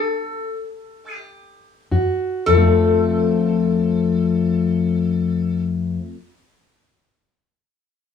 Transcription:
Already playing: resonator guitar played with a steel bar A4
1.14 resonator guitar played with a steel bar G4
1.91 steel-string acoustic guitar F#2 F#4
2.46 steel-string acoustic guitar F2, resonator guitar played with a steel bar A4
2.52 steel-string acoustic guitar F3
2.57 steel-string acoustic guitar A3
2.62 steel-string acoustic guitar C4
2.67 steel-string acoustic guitar A4

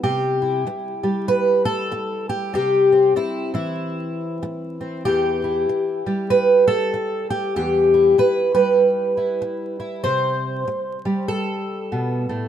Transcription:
Already playing: twelve-string acoustic guitar G3
0.03 twelve-string acoustic guitar C3 G4
0.42 twelve-string acoustic guitar E4
0.67 muted twelve-string acoustic guitar stroke
1.03 twelve-string acoustic guitar G3
1.28 twelve-string acoustic guitar B4
1.65 twelve-string acoustic guitar A4
1.92 muted twelve-string acoustic guitar stroke
2.29 twelve-string acoustic guitar G4
2.54 twelve-string acoustic guitar C3 G4
2.92 twelve-string acoustic guitar C4
3.16 twelve-string acoustic guitar E4, muted twelve-string acoustic guitar stroke
3.54 twelve-string acoustic guitar E3 E4
4.43 muted twelve-string acoustic guitar stroke
4.81 twelve-string acoustic guitar C4
5.05 twelve-string acoustic guitar E2 G4
5.44 twelve-string acoustic guitar E4
5.69 muted twelve-string acoustic guitar stroke
6.06 twelve-string acoustic guitar G3
6.30 twelve-string acoustic guitar B4
6.68 twelve-string acoustic guitar A4
6.94 muted twelve-string acoustic guitar stroke
7.30 twelve-string acoustic guitar G4
7.56 twelve-string acoustic guitar E2 G4
7.94 twelve-string acoustic guitar E4
8.18 twelve-string acoustic guitar B4, muted twelve-string acoustic guitar stroke
8.55 twelve-string acoustic guitar G3 B4
9.17 twelve-string acoustic guitar E4
9.42 muted twelve-string acoustic guitar stroke
9.80 twelve-string acoustic guitar E4
10.04 twelve-string acoustic guitar C3 C5
10.67 muted twelve-string acoustic guitar stroke
11.05 twelve-string acoustic guitar G3
11.28 twelve-string acoustic guitar A4
11.92 twelve-string acoustic guitar B2
12.29 twelve-string acoustic guitar A2

